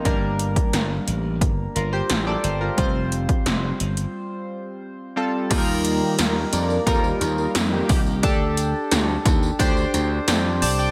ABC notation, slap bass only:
X:1
M:4/4
L:1/8
Q:1/4=88
K:Eblyd
V:1 name="Slap bass" clef=bass
G,,,2 G,,, A,,, G,,, G,,, A,,, G,,, | F,,,2 F,,, G,,, z4 | E,,2 E,, F,, E,, E,, F,, C,, | D,,2 D,, E,, D,, D,, F,, C,, |]